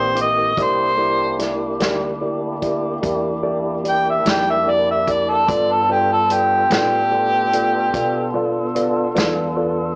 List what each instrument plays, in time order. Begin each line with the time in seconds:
Already playing: upright bass A#1, tonewheel organ E3 A#3 C4 G4, harmonica C5
0.15 upright piano E4 G4 A#4 D6, closed hi-hat
0.21 harmonica D#5
0.57 upright bass C2, tonewheel organ A#3 D4 E4 G4, upright piano E4 G4 A#4 D5, kick, closed hi-hat
0.62 harmonica C5
0.97 upright piano E4 G4 A#4 D5
1.39 upright piano E4 G4 A#4 D5, snare, closed hi-hat
1.80 upright bass D2, upright piano E4 G4 A#4 D5, snare, closed hi-hat
2.21 upright piano E4 G4 A#4 D5
2.62 upright piano E4 G4 A#4 D5, kick, closed hi-hat
3.02 upright bass E2, upright piano E4 G4 A#4 D5, kick, closed hi-hat
3.43 upright piano E4 G4 A#4 D5
3.84 upright piano E4 G4 A#4 D5, closed hi-hat
3.89 harmonica G5
4.10 harmonica E5
4.25 upright bass F2, upright piano E4 G4 A#4 D5, snare, closed hi-hat
4.30 harmonica G5
4.50 harmonica E5
4.66 upright piano E4 G4 A#4 D5, harmonica D5
4.91 harmonica E5
5.07 upright piano E4 G4 A#4 D5, harmonica D5, kick, closed hi-hat
5.29 harmonica A4
5.46 upright bass G2, tonewheel organ B3 D4 F4 A4, upright piano F4 A4 B4 D5, harmonica D5, kick, closed hi-hat
5.72 harmonica A4
5.89 upright piano F4 A4 B4 D5, harmonica G4
6.12 harmonica A4
6.30 upright piano F4 A4 B4 D5, harmonica G4, closed hi-hat
6.70 upright bass A2, upright piano F4 A4 B4 D5, harmonica G4, snare, closed hi-hat
7.11 upright piano F4 A4 B4 D5
7.53 upright piano F4 A4 B4 D5, closed hi-hat
7.93 upright bass B2, upright piano F4 A4 B4 D5, kick, closed hi-hat
8.34 upright piano F4 A4 B4 D5
8.75 upright piano F4 A4 B4 D5, closed hi-hat
9.15 upright bass E2, upright piano F4 A4 B4 D5, snare, closed hi-hat
9.57 upright piano F4 A4 B4 D5